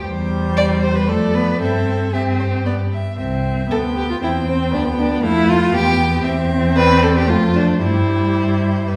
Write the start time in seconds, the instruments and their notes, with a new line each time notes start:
0.04 cello E2, viola G3, violin C5
0.57 violin D5
0.82 violin C5
0.96 violin B4
1.08 cello F2, viola A3, violin A4 D5
1.35 viola B3, violin B4
1.61 cello G2, viola C4, violin A4 E5
2.13 viola C4, violin G4 E5
2.40 violin C5
2.66 viola B3, violin D5
2.93 violin E5
3.18 cello C2, viola C4, violin E5
3.70 cello D2, viola B3, violin A4 G5
3.97 violin G4
4.10 violin F4
4.22 cello E2, viola C4, violin E4 G5
4.48 violin C4
4.71 cello D2, viola B3, violin D4
4.98 violin D4
5.23 cello F2, viola A3, violin E4 F5
5.49 violin F4
5.74 cello E2, viola B3, violin G4 G5
6.25 cello E2, viola C4, violin E5
6.76 violin B4 D5
7.03 violin A4
7.17 violin G4
7.26 cello F2, viola A3, violin F4 C5
7.56 violin D4
7.80 cello G2, viola G3, violin E4 C5
8.87 cello G2, viola G3, violin B4